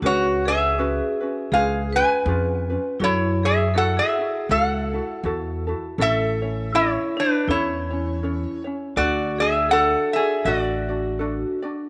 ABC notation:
X:1
M:4/4
L:1/16
Q:"Swing" 1/4=81
K:F#m
V:1 name="Resonator guitar played with a steel bar"
[Fc]2 [Ge]6 [G^e]2 [Bg]6 | [Ec]2 [Ge]2 [Af] [Ge]3 [Af]6 z2 | [K:A] [Ae]4 [Ec]2 [DB]2 [Ec]6 z2 | [Fd]2 [Ge]2 [Af]2 [Ge]2 [Fd]6 z2 |]
V:2 name="Vibraphone"
F2 G6 G2 B6 | E2 G2 A G3 A6 z2 | [K:A] A4 E2 D2 E6 z2 | F2 G2 A2 G2 F6 z2 |]
V:3 name="Ukulele"
[CFGB]2 [CFB]2 [CFGB]2 [CFB]2 [C^EGB]2 [CEB]2 [CEGB]2 [CEB]2 | [EFAc]2 [EF]2 [EFAc]2 [EF]2 [EFAc]2 [EFA]2 [EFAc]2 [EFA]2 | [K:A] [CEAc]2 [CEc]2 [CEAc]2 [Ec]2 [CEAc]2 [CEc]2 [CEAc]2 [CEc]2 | [DFAd]2 [DFd]2 [DFAd]2 [DFd]2 [DFAd]2 [DFd]2 [DFAd]2 [DFd]2 |]
V:4 name="Upright bass" clef=bass
C,,8 C,,4 ^E,,4 | F,,8 C,,4 E,,4 | [K:A] A,,,8 E,,8 | D,,8 A,,,8 |]